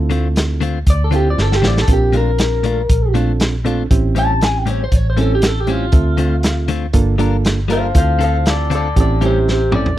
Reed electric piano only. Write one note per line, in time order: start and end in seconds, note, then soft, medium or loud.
0.00 0.62 C4 medium
0.00 0.62 E4 medium
0.00 0.62 F4 medium
0.00 0.62 A4 medium
1.12 1.52 C4 medium
1.12 1.52 E4 medium
1.12 1.52 F4 medium
1.12 1.52 C5 medium
1.63 1.83 C4 medium
1.63 1.83 E4 medium
1.63 1.83 F4 medium
1.63 1.83 G4 medium
1.88 2.65 C4 medium
1.88 2.65 D4 medium
1.88 2.65 F4 medium
1.88 2.65 A#4 medium
3.15 3.54 C4 medium
3.15 3.54 D4 medium
3.15 3.54 F4 medium
3.15 3.55 A4 medium
3.65 3.85 C4 medium
3.65 3.85 D4 medium
3.65 3.85 F4 medium
3.65 3.85 A4 medium
3.91 4.68 C4 medium
3.91 4.68 C#4 medium
3.91 4.68 E4 medium
3.91 4.68 G4 medium
5.17 5.57 C4 medium
5.17 5.57 C#4 medium
5.17 5.57 E4 medium
5.17 5.57 A4 medium
5.67 5.87 C4 medium
5.67 5.87 C#4 medium
5.67 5.87 E4 medium
5.67 5.87 G4 medium
5.92 6.70 C4 medium
5.92 6.70 F4 medium
5.92 6.70 A4 medium
5.92 6.70 E5 medium
6.94 7.15 A#3 loud
6.94 7.15 D4 medium
6.94 7.15 F4 medium
6.94 7.15 A4 loud
7.19 7.59 A#3 medium
7.19 7.59 D4 medium
7.19 7.59 F4 medium
7.19 7.59 A4 medium
7.69 7.89 A#3 medium
7.69 7.90 D4 medium
7.69 7.90 F4 medium
7.69 7.90 A4 medium
7.95 8.72 C4 medium
7.95 8.72 E4 medium
7.95 8.72 F4 medium
7.95 8.72 A4 medium
8.96 9.17 C4 medium
8.96 9.17 C#4 medium
8.96 9.17 E4 medium
8.96 9.17 G4 medium
9.21 9.61 C4 medium
9.21 9.61 C#4 medium
9.21 9.61 E4 medium
9.21 9.61 G4 medium
9.72 9.92 C4 medium
9.72 9.92 C#4 medium
9.72 9.92 E4 medium
9.72 9.92 A4 medium